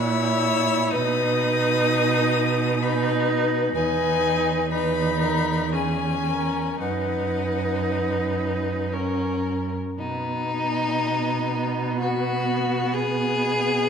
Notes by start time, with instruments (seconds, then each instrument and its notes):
Already playing: cello A#2, viola E4, violin C#5 E6
0.91 cello B2, viola D#4, violin B4 D#6
2.82 viola D#4, violin B4 B5
3.75 cello E2, viola D#4, violin B4 G#5
4.72 viola D#4, violin B4 B5
5.21 violin A#4
5.72 viola C#4, violin G#4 G#5
6.28 violin A#4
6.81 cello F#2, viola D#4, violin B4 F#5
8.92 viola C#4, violin A#4
9.99 cello B2, viola B3, violin D#4 B4
12.00 violin F#4
12.94 violin G#4 D#5